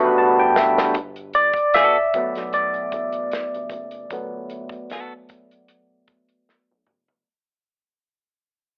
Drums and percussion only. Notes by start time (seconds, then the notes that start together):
0.56 snare
0.78 snare
0.95 kick, closed hi-hat
1.16 closed hi-hat
1.34 closed hi-hat
1.54 kick, closed hi-hat
1.74 snare, closed hi-hat
2.14 kick, closed hi-hat
2.36 snare, closed hi-hat
2.53 closed hi-hat
2.74 closed hi-hat
2.92 kick, closed hi-hat
3.12 closed hi-hat
3.32 snare, closed hi-hat
3.54 closed hi-hat
3.70 kick, closed hi-hat
3.91 closed hi-hat
4.10 kick, closed hi-hat
4.50 closed hi-hat
4.69 kick, closed hi-hat
4.90 snare, closed hi-hat
5.29 kick, closed hi-hat
5.51 closed hi-hat
5.68 closed hi-hat
6.08 kick, closed hi-hat
6.29 closed hi-hat
6.49 snare
6.86 mid tom
7.08 floor tom